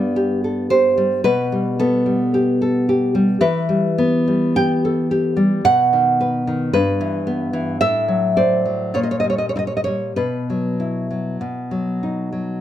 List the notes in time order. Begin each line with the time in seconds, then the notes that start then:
Already playing: G2 G3 B3 D5
0.16 G4
0.44 A4
0.70 G4 C5
0.98 G3
1.24 B2 B4
1.52 G3
1.79 B3 A4
2.06 G3
2.34 G4
2.62 A4
2.89 G4
3.15 G3
3.41 E3 B4
3.69 G3
3.98 B3
4.28 G3
4.56 G4 G5
4.85 A4
5.11 G4
5.37 G3
5.65 B2 F#5
5.93 D#3
6.21 B4
6.47 D#3
6.73 G2 B4
7.01 E3
7.27 B3
7.53 E3
7.81 A2 E5
8.08 F#3
8.37 C5 D5
8.66 F#3
8.94 A#2 C#5
9.03 D#5
9.11 C#5
9.20 D#5
9.24 G3
9.30 C#5
9.38 D#5
9.49 C#5
9.56 E4 D#5
9.67 C#5
9.77 D#5
9.84 G3 C#5
10.16 B2 B4
10.50 F#3
10.80 E4
11.11 F#3
11.41 B2
11.71 F#3
12.03 D#4
12.33 F#3